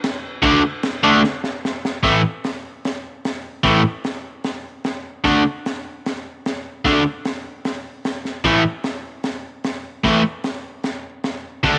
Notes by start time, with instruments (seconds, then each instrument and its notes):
0.04 snare, crash
0.42 overdriven electric guitar D3 A3 D4, kick, crash
0.83 snare, crash
1.04 overdriven electric guitar D3 A3 D4
1.24 snare
1.44 snare
1.65 snare
1.85 snare
2.03 overdriven electric guitar A2 E3 A3, kick, snare, open hi-hat
2.44 snare, open hi-hat
2.85 snare, open hi-hat
3.25 snare, open hi-hat
3.64 overdriven electric guitar A2 E3 A3, kick, snare, open hi-hat
4.04 snare, open hi-hat
4.44 snare, open hi-hat
4.84 snare, open hi-hat
5.24 overdriven electric guitar D3 A3 D4, kick, snare, open hi-hat
5.66 snare, open hi-hat
6.06 snare, open hi-hat
6.46 snare, open hi-hat
6.85 overdriven electric guitar D3 A3 D4, kick, snare, open hi-hat
7.25 snare, open hi-hat
7.65 snare, open hi-hat
8.05 snare, open hi-hat
8.25 snare
8.44 overdriven electric guitar A2 E3 A3, kick, snare, open hi-hat
8.84 snare, open hi-hat
9.23 snare, open hi-hat
9.64 snare, open hi-hat
10.04 overdriven electric guitar A2 E3 A3, kick, snare, open hi-hat
10.44 snare, open hi-hat
10.84 snare, open hi-hat
11.24 snare, open hi-hat
11.63 overdriven electric guitar D3 A3 D4, kick, snare, open hi-hat